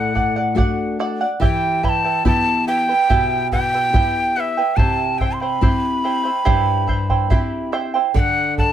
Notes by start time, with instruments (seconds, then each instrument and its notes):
Already playing: nylon-string guitar A2, charango A4 D5 F#5, quena F#5
0.15 charango A4 D5 F#5, bombo low
0.36 charango D5 F#5
0.55 nylon-string guitar A3 D4 F#4, charango A4 D5 F#5, bombo low
0.99 charango A4 D5 F#5, bombo rim
1.21 charango D5 F#5
1.40 nylon-string guitar E3, charango E4 G4 B4 E5 G5, quena G5, bombo low
1.83 charango E4 B4 E5 G5, quena B5, bombo low
1.89 quena A5
2.04 charango E4 B4 G5
2.25 nylon-string guitar B3 E4 G4, charango E4 B4 E5 G5, quena A5, bombo low
2.67 charango E4 B4 E5 G5, quena G5
2.89 charango E4 B4 G5
3.10 nylon-string guitar B2, charango E4 G4 B4 E5 G5, bombo low
3.52 charango E4 B4 E5 G5, quena G5, bombo low
3.74 charango E4 B4 G5
3.93 nylon-string guitar B3 E4 G4, charango E4 B4 E5 G5, bombo low
4.36 charango E4 B4 E5 G5, quena E5 F#5
4.57 charango E4 B4 G5
4.76 nylon-string guitar C3, charango E4 G4 C5 E5 G5, quena A5, bombo low
5.18 charango E4 C5 E5 G5, quena G5, bombo low
5.33 quena C6
5.41 charango E4 C5 G5, quena B5
5.61 nylon-string guitar C4 E4 G4, charango E4 C5 E5 G5, bombo low
6.04 charango E4 C5 E5 G5
6.24 charango E4 C5 G5
6.45 nylon-string guitar G2, charango E4 G4 C5 E5 G5, bombo low
6.87 charango E4 C5 E5 G5, bombo low
7.09 charango E4 C5 G5, bombo low
7.30 nylon-string guitar C4 E4 G4, charango E4 C5 E5 G5, bombo low
7.72 charango E4 C5 E5 G5, bombo rim
7.94 charango E4 C5 G5
8.14 nylon-string guitar D3, charango A4 D5 F#5, quena G5, bombo low
8.19 quena F#5
8.58 charango A4 D5 F#5, quena A5, bombo low